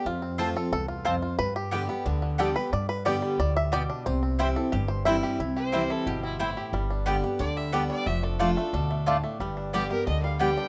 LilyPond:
<<
  \new Staff \with { instrumentName = "Fiddle" } { \time 4/4 \key c \major \tempo 4 = 180 r1 | r1 | r1 | r1 |
r8 c''4 a'8 g'8 e'8 e'4 | r2 d''8 e''8 a'8 d''8 | e''8 a'8 a'2 r4 | r4 g'8 bes'8 ees''8 f''8 g''4 | }
  \new Staff \with { instrumentName = "Mandolin" } { \time 4/4 \key c \major r4 <c' f' c'' a''>16 r4. r16 <c' f' c'' a''>16 r8. | r4 <b g' d'' g''>16 r4. r16 <b g' d'' g''>16 r8. | r4 <b g' d'' g''>16 r4. r16 <b g' d'' g''>16 r8. | r4 <c' e' c'' g''>16 r4. r16 <c' e' c'' g''>16 r8. |
r4 <c' e' c'' g''>16 r4. r16 <c' e' c'' g''>16 r8. | r4 <b g' d'' g''>16 r4. r16 <b g' d'' g''>16 r8. | r4 <a f' d'' a''>16 r4. r16 <a f' d'' a''>16 r8. | r4 <b g' d'' g''>16 r4. r16 <b g' d'' g''>16 r8. | }
  \new Staff \with { instrumentName = "Five-string banjo" } { \time 4/4 \key c \major << { f'4. a'8 a'8 r8 c''4 | b'8 g'4. r4 a'8 b'8 | d''8 b'8 d''4 d''8 e''8 d''4 | c''8 r4 a'8 g'8 c''8 e''4 |
r1 | r1 | r1 | r1 | } \\ { r8 c'8 f'4. f'4 f'8 | r4 g8 b8 d'8 d4. | r4. g4. r8 d'8 | r8 c'8 g'4. r4 g'8 |
e'8 g'8 c'8 e'8 g'8 c'8 e'8 g'8 | g8 d'8 g8 g'8 d'8 g8 b8 d'8 | a8 d'8 d'8 a8 d'8 a8 d'8 a8 | g8 d'8 g8 g'8 d'8 g8 b8 d'8 | } >> }
  \new Staff \with { instrumentName = "Steel-string acoustic guitar" } { \clef bass \time 4/4 \key c \major << { r4 <f a c' f'>8 <c' f'>8 r2 | r4 <d g b g'>8 <b g'>8 r4 <d g b g'>8 <b g'>8 | r4 <d g b g'>4 r2 | r4 <e g c' e'>8 <c' e'>8 r4 <e g c' e'>4 |
r4 <e g c' e'>4 r2 | r4 <d g b g'>8 <b g'>8 r4 <d g b g'>4 | r4 <f a d' f'>8 <d' f'>8 r2 | r4 <d g b g'>8 <b g'>8 r4 <d g b g'>4 | } \\ { f,2 e,4 f,4 | g,2 d2 | g,2 a,4 b,4 | c2 g,2 |
c2 b,4 a,4 | g,2 d2 | f2 b,4 a,4 | g,2 d2 | } >> }
  \new Staff \with { instrumentName = "Upright bass" } { \clef bass \time 4/4 \key c \major f,2 c,2 | g,2 d,2 | g,2 d,2 | c,2 g,,2 |
c,2 g,,2 | g,,2 d,2 | f,,2 d,2 | g,,2 d,2 | }
>>